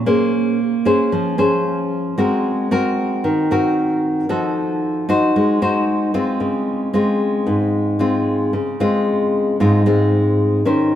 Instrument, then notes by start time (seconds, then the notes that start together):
nylon-string guitar
0.06 A#3 C#4 G#4 C5
0.85 C#4 G#4 C5
1.12 F3
1.38 C#4 G#4 C5
2.18 G#3 C4 F#4 A#4
2.71 C4 F#4 A#4
3.24 D#3
3.51 C4 F#4 A#4
4.29 F3 D#4 F#4 A4
5.09 D#4 F#4 C5
5.36 G#3
5.62 D#4 F#4 C5
6.14 G#3 C4 F4
6.40 C#3
6.94 G#3 C4 F4
7.47 G#2
7.99 G#3 C4 F4
8.53 C#3
8.80 G#3 C4 F4
9.60 G#2 G#3 C4 F4
9.86 G#3 C4 F4
10.65 D#3 C#4 G4 C5